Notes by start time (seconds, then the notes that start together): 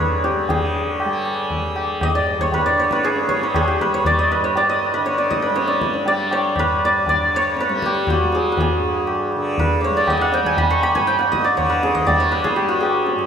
Already playing: G2 D3 G3 G#4 B4 C#5
0.24 G4, tabla te
0.36 G3
0.49 D3 G#4, tabla tin, tabla ge
1.00 tabla na
1.05 G3
1.25 tabla na
1.50 tabla tin, tabla ge
1.62 G3
1.76 tabla na
2.01 D#5, tabla na, tabla ge
2.15 G2 D5
2.27 tabla te
2.39 C#5, tabla ge
2.52 B4, tabla tin, tabla ge
2.66 D5
2.72 D3
2.78 C#5, tabla na
2.91 B4, tabla ke
3.04 G#4, tabla te
3.16 tabla te
3.27 G3 C#5, tabla ke
3.41 B4, tabla te
3.54 G#4, tabla na, tabla ge
3.68 G4
3.80 B4, tabla ge
3.84 G3
3.94 C#5
4.05 D5, tabla tin, tabla ge
4.19 D#5
4.31 B4
4.39 G2
4.44 C#5
4.56 D5, tabla tin
4.69 D#5
4.94 D3 B4
5.06 C#5, tabla te
5.18 D5, tabla te
5.30 D#5, tabla ke
5.42 B4, tabla te
5.50 G3
5.56 C#5, tabla te
5.67 D5, tabla te
5.81 tabla ke
5.94 tabla te
6.04 G3 D5, tabla tin
6.31 C#5, tabla na
6.56 B4, tabla na, tabla ge
6.60 G2
6.85 D5
7.06 D5, tabla tin, tabla ge
7.16 D3
7.36 C#5
7.57 B4, tabla te
7.69 G3, tabla te
7.82 G4, tabla ke
7.95 tabla te
8.07 F#4, tabla na, tabla ge
8.23 G3
8.32 G#4, tabla te
8.52 B4
8.57 G#4, tabla tin, tabla ge
8.80 G2
9.07 tabla na
9.32 D3, tabla na
9.58 B4, tabla tin, tabla ge
9.81 C#5 D5
9.90 G3
9.97 D5
10.07 D#5, tabla na, tabla ge
10.17 F#5 G5
10.32 G5, tabla te
10.43 G3 G#5, tabla ge
10.57 B5, tabla tin, tabla ge
10.70 C#6
10.83 B5, tabla na
10.95 G2 G#5, tabla ke
11.07 G5, tabla te
11.19 F#5, tabla te
11.32 D#5, tabla ke
11.44 D5, tabla te
11.55 D3 C#5, tabla na, tabla ge
11.70 B4
11.83 G#4, tabla te
11.95 D#5, tabla ge
12.07 G3 D5, tabla tin, tabla ge
12.20 C#5
12.32 B4, tabla na
12.44 G#4, tabla ke
12.56 G4, tabla tin
12.63 G3
12.69 F#4
12.80 G#4, tabla na
13.07 tabla te
13.16 G2, tabla te